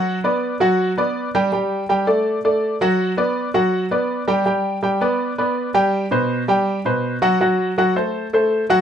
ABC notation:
X:1
M:4/4
L:1/8
Q:1/4=163
K:G
V:1 name="Grand piano"
[F,Ff] [B,Bd]2 [F,Ff]2 [B,Bd]2 [G,Gg] | [G,Gg]2 [G,Gg] [A,Ad]2 [A,Ad]2 [F,Ff]- | [F,Ff] [B,Bd]2 [F,Ff]2 [B,Bd]2 [G,Gg] | [G,Gg]2 [G,Gg] [B,Bd]2 [B,Bd]2 [G,Gg]- |
[G,Gg] [B,,Bc]2 [G,Gg]2 [B,,Bc]2 [F,Ff] | [F,Ff]2 [F,Ff] [A,Ac]2 [A,Ac]2 [F,Ff] |]